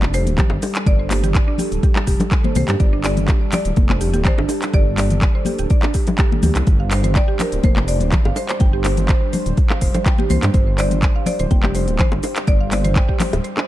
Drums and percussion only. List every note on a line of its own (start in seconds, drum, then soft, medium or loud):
0.02 clap loud
0.02 muted conga soft
0.02 high conga loud
0.14 open hi-hat loud
0.14 cabasa loud
0.27 closed hi-hat medium
0.27 high conga medium
0.27 cabasa medium
0.38 kick loud
0.38 clap loud
0.38 closed hi-hat soft
0.38 mid tom medium
0.38 low conga medium
0.38 cabasa soft
0.50 high bongo loud
0.50 muted conga soft
0.62 open hi-hat medium
0.62 low bongo loud
0.62 cabasa loud
0.75 clap loud
0.75 closed hi-hat medium
0.75 cabasa medium
0.86 kick loud
0.86 closed hi-hat soft
0.86 muted conga medium
0.86 cabasa soft
1.10 clap loud
1.10 open hi-hat medium
1.10 high conga medium
1.10 cabasa loud
1.24 closed hi-hat medium
1.24 mid tom medium
1.24 muted conga soft
1.24 cabasa medium
1.35 kick loud
1.35 clap loud
1.35 closed hi-hat soft
1.35 cabasa soft
1.58 open hi-hat medium
1.58 muted conga medium
1.58 low conga medium
1.58 cabasa loud
1.72 closed hi-hat medium
1.72 cabasa medium
1.83 kick loud
1.83 closed hi-hat soft
1.83 cabasa soft
1.96 clap loud
1.96 high bongo medium
1.96 low bongo medium
1.96 muted conga soft
2.07 kick medium
2.07 open hi-hat loud
2.07 cabasa loud
2.20 closed hi-hat medium
2.20 low bongo medium
2.20 low conga loud
2.20 cabasa medium
2.31 kick loud
2.31 clap loud
2.31 closed hi-hat soft
2.31 cabasa soft
2.44 mid tom medium
2.44 muted conga medium
2.44 high conga loud
2.55 open hi-hat medium
2.55 mid tom medium
2.55 high conga loud
2.55 cabasa loud
2.68 clap loud
2.68 closed hi-hat medium
2.68 low bongo medium
2.68 cabasa medium
2.80 kick loud
2.80 closed hi-hat soft
2.80 muted conga medium
2.80 cabasa soft
3.04 clap loud
3.04 open hi-hat medium
3.04 cabasa loud
3.17 closed hi-hat medium
3.17 mid tom medium
3.17 muted conga soft
3.17 cabasa medium
3.28 kick loud
3.28 clap loud
3.28 closed hi-hat soft
3.28 low bongo medium
3.28 cabasa soft
3.52 clap medium
3.52 open hi-hat medium
3.52 muted conga medium
3.52 low conga loud
3.52 cabasa loud
3.65 closed hi-hat medium
3.65 cabasa medium
3.76 kick loud
3.76 closed hi-hat soft
3.76 high conga loud
3.76 cabasa soft
3.89 clap loud
3.89 muted conga soft
3.89 high conga loud
4.01 open hi-hat medium
4.01 cabasa loud
4.14 closed hi-hat medium
4.14 high conga medium
4.14 cabasa medium
4.25 kick loud
4.25 clap loud
4.25 closed hi-hat soft
4.25 mid tom medium
4.25 low conga medium
4.25 cabasa soft
4.38 high bongo loud
4.38 muted conga medium
4.49 open hi-hat medium
4.49 low bongo loud
4.49 cabasa loud
4.62 clap medium
4.62 closed hi-hat medium
4.62 cabasa medium
4.74 kick loud
4.74 closed hi-hat soft
4.74 muted conga soft
4.74 cabasa soft
4.98 clap medium
4.98 open hi-hat medium
4.98 high conga medium
4.98 cabasa loud
5.10 closed hi-hat medium
5.10 mid tom medium
5.10 muted conga soft
5.10 cabasa medium
5.22 kick loud
5.22 clap loud
5.22 closed hi-hat soft
5.22 cabasa soft
5.45 open hi-hat medium
5.45 muted conga soft
5.45 high conga medium
5.45 low conga medium
5.45 cabasa loud
5.59 closed hi-hat medium
5.59 cabasa medium
5.70 kick loud
5.70 closed hi-hat soft
5.70 cabasa soft
5.83 clap loud
5.83 high bongo medium
5.83 low bongo medium
5.83 muted conga soft
5.94 kick medium
5.94 open hi-hat medium
5.94 cabasa medium
6.07 closed hi-hat medium
6.07 low bongo loud
6.07 low conga loud
6.07 cabasa medium
6.18 kick loud
6.18 clap loud
6.18 closed hi-hat soft
6.18 cabasa soft
6.31 mid tom medium
6.31 muted conga medium
6.31 high conga medium
6.43 open hi-hat medium
6.43 mid tom loud
6.43 high conga loud
6.43 cabasa loud
6.55 clap medium
6.55 closed hi-hat medium
6.55 low bongo medium
6.55 cabasa medium
6.67 kick loud
6.67 closed hi-hat soft
6.67 muted conga soft
6.67 cabasa soft
6.91 clap medium
6.91 open hi-hat medium
6.91 cabasa loud
7.03 closed hi-hat medium
7.03 mid tom medium
7.03 muted conga soft
7.03 cabasa medium
7.15 kick loud
7.15 clap loud
7.15 closed hi-hat soft
7.15 low bongo medium
7.15 cabasa soft
7.39 clap medium
7.39 open hi-hat medium
7.39 muted conga medium
7.39 low conga medium
7.39 cabasa loud
7.52 closed hi-hat medium
7.52 cabasa medium
7.64 kick loud
7.64 closed hi-hat soft
7.64 high conga loud
7.64 cabasa soft
7.76 clap medium
7.76 muted conga soft
7.76 high conga loud
7.88 open hi-hat medium
7.88 cabasa medium
8.00 closed hi-hat medium
8.00 high conga medium
8.00 cabasa medium
8.12 kick loud
8.12 clap loud
8.12 closed hi-hat soft
8.12 mid tom medium
8.12 low conga medium
8.12 cabasa soft
8.25 high bongo loud
8.25 muted conga soft
8.36 open hi-hat medium
8.36 low bongo loud
8.36 cabasa loud
8.49 clap medium
8.49 closed hi-hat medium
8.49 cabasa medium
8.60 kick loud
8.60 closed hi-hat soft
8.60 muted conga medium
8.60 cabasa soft
8.84 clap medium
8.84 open hi-hat medium
8.84 high conga medium
8.84 cabasa medium
8.97 closed hi-hat medium
8.97 mid tom medium
8.97 muted conga soft
8.97 cabasa medium
9.09 kick loud
9.09 clap loud
9.09 closed hi-hat soft
9.09 cabasa soft
9.33 open hi-hat medium
9.33 muted conga medium
9.33 low conga medium
9.33 cabasa medium
9.46 closed hi-hat medium
9.46 cabasa medium
9.57 kick loud
9.57 closed hi-hat soft
9.57 cabasa soft
9.70 clap medium
9.70 high bongo medium
9.70 low bongo medium
9.70 muted conga soft
9.81 kick medium
9.81 open hi-hat loud
9.81 cabasa medium
9.94 closed hi-hat medium
9.94 low bongo loud
9.94 low conga loud
9.94 cabasa soft
10.06 kick loud
10.06 clap loud
10.06 closed hi-hat soft
10.06 cabasa soft
10.18 mid tom medium
10.18 muted conga medium
10.18 high conga medium
10.30 open hi-hat medium
10.30 mid tom loud
10.30 high conga medium
10.30 cabasa medium
10.42 clap medium
10.42 closed hi-hat medium
10.42 low bongo medium
10.42 cabasa medium
10.54 kick loud
10.54 closed hi-hat soft
10.54 muted conga medium
10.54 cabasa soft
10.78 clap medium
10.78 open hi-hat medium
10.78 cabasa medium
10.91 closed hi-hat medium
10.91 mid tom medium
10.91 muted conga soft
10.91 cabasa soft
11.03 kick loud
11.03 clap loud
11.03 closed hi-hat soft
11.03 low bongo medium
11.03 cabasa soft
11.26 open hi-hat medium
11.26 muted conga medium
11.26 low conga loud
11.26 cabasa medium
11.39 closed hi-hat medium
11.39 cabasa medium
11.51 kick loud
11.51 closed hi-hat soft
11.51 high conga loud
11.51 cabasa soft
11.63 clap medium
11.63 muted conga soft
11.63 high conga loud
11.75 open hi-hat loud
11.75 cabasa medium
11.88 closed hi-hat medium
11.88 high conga medium
11.88 cabasa soft
11.99 kick loud
11.99 clap loud
11.99 closed hi-hat soft
11.99 mid tom medium
11.99 low conga medium
11.99 cabasa soft
12.12 high bongo loud
12.12 muted conga medium
12.23 open hi-hat medium
12.23 low bongo medium
12.23 cabasa medium
12.36 clap medium
12.36 closed hi-hat medium
12.36 cabasa medium
12.47 kick loud
12.47 closed hi-hat soft
12.47 muted conga medium
12.47 cabasa soft
12.72 clap medium
12.72 open hi-hat loud
12.72 high conga medium
12.72 cabasa medium
12.85 closed hi-hat medium
12.85 mid tom medium
12.85 muted conga soft
12.85 cabasa soft
12.96 kick loud
12.96 clap loud
12.96 closed hi-hat soft
12.96 low bongo medium
12.96 cabasa soft
13.09 kick medium
13.20 clap medium
13.20 open hi-hat medium
13.20 low bongo medium
13.20 muted conga medium
13.20 high conga medium
13.20 low conga medium
13.20 cabasa medium
13.33 closed hi-hat medium
13.33 high bongo medium
13.33 cabasa medium
13.44 closed hi-hat soft
13.44 cabasa soft
13.57 clap loud
13.57 high bongo medium
13.57 low bongo medium
13.57 muted conga soft